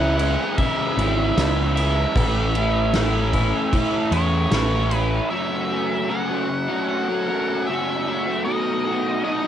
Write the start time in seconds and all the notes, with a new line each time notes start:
Already playing: C#2 E3 G#3 C#4 E4 F#5
0.18 G#3 C#4 E4, crash
0.58 C#3 E3 G#3 C#4 E4 E5, kick, crash
0.96 G#1 G#3 C#4 E4, crash
1.36 C#2 E3 G#3 C#4 E4, snare, crash
1.75 G#3 C#4 E4 E5, crash
2.15 A1 A2 E3 A3 C#4 E4, kick, crash
2.55 A3 C#4 E4, crash
2.94 E3 A3 C#4 E4, snare, crash
3.33 A3 C#4 E4, kick, crash
3.73 A2 E3 A3 C#4 E4, kick, crash
4.11 E2 A3 C#4 E4 C#5, crash
4.51 A1 E3 A3 C#4 E4, snare, crash
4.91 A3 C#4 E4, crash
4.96 B4
5.30 F#2 C#3 F#3 A3 C#4 F#4 E5
5.71 F#3 A3 C#4 F#4
6.09 F#2 C#3 F#3 A3 C#4 F#4 F#5
6.29 F#3 A3 C#4 F#4
6.49 muted overdriven electric guitar stroke
6.68 F#3 A3 C#4 F#4
6.89 F#5
7.09 F#3 A3 C#4 F#4
7.28 F#3 A3 C#4 F#4
7.67 F#2 C#3 F#3 A3 C#4 F#4 E5
8.07 F#3 A3 C#4 F#4
8.26 F#3 A3 C#4 F#4
8.45 B2 F#3 A3 D#4 F#4 D#5
8.85 F#3 A3 D#4 F#4
9.23 B2 F#3 A3 D#4 F#4 D#5
9.43 D#4 F#4